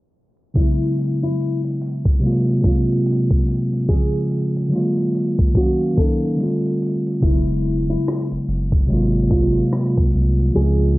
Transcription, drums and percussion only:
0.55 kick loud
0.55 closed hi-hat medium
0.81 closed hi-hat soft
0.99 closed hi-hat soft
1.23 closed hi-hat soft
1.41 closed hi-hat medium
1.64 closed hi-hat soft
1.82 closed hi-hat medium
2.05 kick medium
2.05 closed hi-hat soft
2.23 closed hi-hat medium
2.49 closed hi-hat soft
2.64 kick medium
2.64 closed hi-hat medium
2.90 closed hi-hat soft
3.06 closed hi-hat medium
3.31 kick medium
3.31 closed hi-hat soft
3.48 closed hi-hat medium
3.73 closed hi-hat soft
3.89 kick loud
3.89 closed hi-hat medium
4.13 closed hi-hat soft
4.31 closed hi-hat medium
4.56 closed hi-hat soft
4.73 closed hi-hat medium
4.97 closed hi-hat soft
5.15 closed hi-hat medium
5.39 kick medium
5.39 closed hi-hat soft
5.55 kick medium
5.55 closed hi-hat medium
5.82 closed hi-hat soft
5.97 kick medium
5.97 closed hi-hat medium
6.24 closed hi-hat soft
6.40 closed hi-hat medium
6.66 closed hi-hat soft
6.82 closed hi-hat medium
7.07 closed hi-hat soft
7.22 kick loud
7.22 closed hi-hat medium
7.48 closed hi-hat soft
7.66 closed hi-hat medium
7.90 closed hi-hat soft
8.07 cross-stick medium
8.07 closed hi-hat medium
8.31 closed hi-hat soft
8.49 closed hi-hat medium
8.72 kick medium
8.72 closed hi-hat soft
8.90 closed hi-hat medium
9.15 closed hi-hat soft
9.31 kick medium
9.31 closed hi-hat medium
9.57 closed hi-hat soft
9.73 cross-stick medium
9.73 closed hi-hat medium
9.97 kick medium
9.97 closed hi-hat soft
10.15 closed hi-hat medium
10.39 closed hi-hat medium
10.56 closed hi-hat medium
10.80 closed hi-hat soft

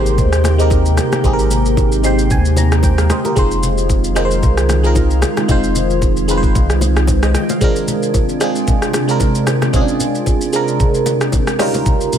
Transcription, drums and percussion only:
0.06 shaker soft
0.18 kick loud
0.18 low conga medium
0.18 shaker medium
0.33 cross-stick medium
0.33 shaker medium
0.44 cross-stick medium
0.44 low bongo medium
0.44 shaker loud
0.59 shaker soft
0.70 kick medium
0.70 high bongo medium
0.70 shaker medium
0.86 shaker medium
0.97 cross-stick medium
0.97 high bongo soft
0.97 low bongo medium
0.97 shaker medium
1.12 cross-stick medium
1.12 low bongo medium
1.12 shaker medium
1.24 kick loud
1.24 low conga medium
1.24 shaker medium
1.39 shaker soft
1.51 low conga medium
1.51 shaker loud
1.66 shaker medium
1.77 kick medium
1.77 high bongo medium
1.77 shaker medium
1.92 shaker medium
2.04 shaker medium
2.19 shaker soft
2.31 kick loud
2.31 low conga medium
2.31 shaker medium
2.45 shaker medium
2.56 low bongo medium
2.56 shaker medium
2.72 cross-stick loud
2.72 shaker medium
2.83 kick loud
2.83 high bongo medium
2.83 shaker medium
2.98 cross-stick medium
2.98 shaker medium
3.10 cross-stick loud
3.10 high bongo soft
3.10 low bongo medium
3.10 shaker medium
3.25 low bongo medium
3.25 shaker medium
3.36 kick loud
3.36 low conga medium
3.36 shaker medium
3.51 shaker soft
3.63 low conga medium
3.63 shaker loud
3.78 shaker medium
3.89 kick medium
3.89 high bongo medium
3.89 shaker medium
4.04 shaker medium
4.16 cross-stick loud
4.16 shaker medium
4.31 shaker medium
4.43 kick loud
4.43 low conga medium
4.43 shaker medium
4.57 cross-stick medium
4.57 shaker medium
4.69 cross-stick medium
4.69 low bongo medium
4.69 shaker medium
4.84 shaker soft
4.95 kick medium
4.95 high bongo medium
4.95 shaker medium
5.10 shaker medium
5.22 cross-stick loud
5.22 high bongo soft
5.22 low bongo medium
5.22 shaker medium
5.37 cross-stick medium
5.37 low bongo medium
5.37 shaker medium
5.49 kick loud
5.49 low conga medium
5.49 shaker medium
5.64 shaker soft
5.75 low conga medium
5.75 shaker loud
5.90 shaker medium
6.02 kick medium
6.02 high bongo medium
6.02 shaker medium
6.17 shaker medium
6.29 shaker medium
6.43 kick loud
6.43 shaker soft
6.55 kick loud
6.55 low conga medium
6.55 shaker medium
6.70 cross-stick medium
6.70 shaker medium
6.81 low bongo medium
6.81 shaker medium
6.96 cross-stick loud
6.96 shaker medium
7.07 kick loud
7.07 high bongo medium
7.07 shaker medium
7.23 cross-stick loud
7.23 shaker medium
7.35 cross-stick medium
7.35 high bongo soft
7.35 low bongo medium
7.35 shaker medium
7.49 low bongo medium
7.49 shaker medium
7.61 kick loud
7.61 low conga medium
7.61 shaker medium
7.76 shaker soft
7.88 low conga medium
7.88 shaker loud
8.03 shaker medium
8.14 kick medium
8.14 high bongo medium
8.14 shaker medium
8.29 shaker medium
8.41 cross-stick medium
8.41 shaker medium
8.56 shaker medium
8.68 kick loud
8.68 low conga medium
8.68 shaker medium
8.82 cross-stick medium
8.82 shaker medium
8.93 cross-stick loud
8.93 low bongo medium
8.93 shaker medium
9.09 shaker soft
9.20 kick medium
9.20 high bongo medium
9.20 shaker medium
9.35 shaker medium
9.47 cross-stick loud
9.47 high bongo soft
9.47 low bongo medium
9.47 shaker medium
9.62 cross-stick medium
9.62 low bongo medium
9.62 shaker medium
9.74 kick loud
9.74 low conga medium
9.74 shaker medium
9.88 shaker soft
10.00 low conga medium
10.00 shaker loud
10.15 shaker medium
10.26 kick medium
10.26 high bongo medium
10.26 shaker medium
10.41 shaker medium
10.53 shaker medium
10.68 shaker soft
10.80 kick loud
10.80 low conga medium
10.80 shaker medium
10.94 shaker medium
11.06 low bongo medium
11.06 shaker medium
11.21 cross-stick loud
11.21 shaker medium
11.32 kick loud
11.32 high bongo medium
11.32 shaker medium
11.47 cross-stick loud
11.47 shaker medium
11.59 cross-stick loud
11.59 open hi-hat medium
11.59 high bongo soft
11.59 low bongo medium
11.59 shaker medium
11.74 low bongo medium
11.74 shaker medium
11.86 kick loud
11.86 low conga medium
11.86 shaker medium
12.01 shaker soft
12.13 low conga medium
12.13 shaker medium

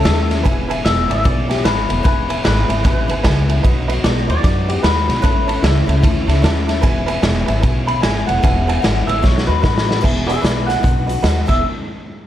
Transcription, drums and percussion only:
0.05 snare loud
0.05 ride medium
0.31 snare soft
0.31 ride medium
0.46 kick loud
0.46 ride medium
0.71 ride medium
0.86 snare loud
0.86 ride medium
1.11 ride medium
1.25 kick loud
1.25 ride medium
1.51 snare soft
1.51 ride medium
1.65 snare loud
1.65 ride loud
1.90 ride medium
2.05 kick loud
2.05 ride medium
2.30 ride medium
2.45 snare loud
2.45 ride medium
2.70 ride medium
2.85 kick loud
2.85 snare soft
2.85 ride medium
3.09 ride medium
3.24 kick medium
3.24 snare loud
3.24 ride medium
3.49 ride medium
3.65 kick loud
3.65 ride medium
3.89 ride medium
4.04 snare loud
4.04 ride medium
4.30 ride medium
4.44 kick loud
4.44 snare soft
4.44 ride medium
4.70 ride medium
4.84 snare loud
4.84 ride medium
5.10 snare soft
5.10 ride medium
5.24 kick loud
5.24 ride medium
5.49 ride medium
5.64 snare loud
5.64 ride medium
5.89 ride medium
6.04 kick loud
6.04 ride loud
6.29 snare soft
6.29 ride medium
6.44 snare loud
6.44 ride medium
6.69 snare soft
6.69 ride medium
6.83 kick loud
6.83 ride medium
7.08 ride medium
7.23 snare loud
7.23 ride medium
7.48 ride medium
7.63 kick loud
7.63 ride medium
7.88 ride medium
8.03 snare loud
8.03 ride loud
8.29 ride medium
8.44 kick loud
8.44 ride medium
8.69 ride medium
8.84 snare loud
8.84 ride medium
9.09 ride medium
9.24 kick loud
9.24 snare medium
9.38 snare medium
9.64 kick medium
9.64 snare medium
9.78 snare loud
9.91 snare loud
10.04 kick loud
10.04 crash loud
10.29 closed hi-hat medium
10.45 snare loud
10.45 closed hi-hat medium
10.70 snare soft
10.70 closed hi-hat medium
10.84 kick loud
10.84 closed hi-hat medium
11.09 closed hi-hat medium
11.24 snare loud
11.24 closed hi-hat medium
11.49 kick loud
11.49 crash medium

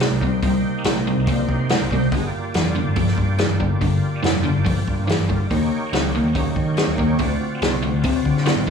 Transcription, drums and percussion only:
0.00 snare loud
0.00 open hi-hat soft
0.21 kick medium
0.42 kick loud
0.42 open hi-hat soft
0.84 snare loud
0.84 open hi-hat medium
1.27 kick loud
1.27 open hi-hat medium
1.49 kick medium
1.69 snare loud
1.69 open hi-hat soft
1.91 kick medium
2.12 kick loud
2.12 open hi-hat soft
2.54 snare loud
2.54 open hi-hat soft
2.96 kick loud
2.96 open hi-hat soft
3.08 snare soft
3.18 kick medium
3.38 snare loud
3.38 open hi-hat soft
3.60 kick medium
3.81 kick medium
3.81 open hi-hat soft
4.24 snare loud
4.24 open hi-hat soft
4.66 kick loud
4.66 open hi-hat medium
4.88 kick medium
5.09 snare loud
5.09 open hi-hat soft
5.30 kick medium
5.51 kick medium
5.51 open hi-hat soft
5.93 snare loud
5.93 open hi-hat soft
6.35 kick loud
6.35 open hi-hat soft
6.56 kick medium
6.77 snare loud
6.77 open hi-hat soft
6.98 kick medium
7.19 kick medium
7.19 open hi-hat soft
7.62 snare loud
7.62 open hi-hat soft
8.03 kick loud
8.03 open hi-hat medium
8.25 kick medium
8.37 snare soft
8.46 snare loud
8.46 open hi-hat soft

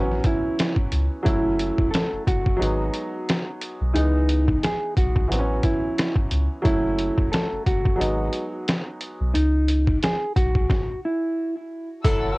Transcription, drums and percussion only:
0.11 snare soft
0.24 kick medium
0.24 closed hi-hat medium
0.59 snare loud
0.59 closed hi-hat medium
0.76 kick medium
0.92 closed hi-hat medium
1.26 kick loud
1.26 closed hi-hat loud
1.59 closed hi-hat medium
1.78 kick medium
1.94 snare loud
1.94 snare medium
1.94 closed hi-hat medium
2.27 kick medium
2.27 closed hi-hat medium
2.46 kick medium
2.62 closed hi-hat loud
2.94 closed hi-hat medium
3.29 snare loud
3.29 closed hi-hat medium
3.62 closed hi-hat medium
3.96 closed hi-hat loud
4.29 closed hi-hat medium
4.48 kick medium
4.63 snare loud
4.63 snare medium
4.63 closed hi-hat medium
4.97 kick medium
4.97 closed hi-hat medium
5.16 kick medium
5.32 closed hi-hat loud
5.63 kick medium
5.63 closed hi-hat medium
5.98 snare loud
5.98 closed hi-hat medium
6.16 kick medium
6.31 closed hi-hat medium
6.65 kick loud
6.65 closed hi-hat medium
6.99 closed hi-hat medium
7.18 kick medium
7.33 snare loud
7.33 snare medium
7.33 closed hi-hat medium
7.66 kick medium
7.66 closed hi-hat medium
7.85 kick medium
8.01 closed hi-hat medium
8.33 closed hi-hat medium
8.68 snare loud
8.68 closed hi-hat medium
9.01 closed hi-hat medium
9.35 closed hi-hat loud
9.68 closed hi-hat medium
9.87 kick medium
10.03 snare loud
10.03 snare medium
10.03 closed hi-hat medium
10.36 kick medium
10.36 closed hi-hat medium
10.55 kick medium
10.70 kick loud
10.70 snare medium
12.04 kick loud
12.04 closed hi-hat loud
12.04 sleigh bells medium

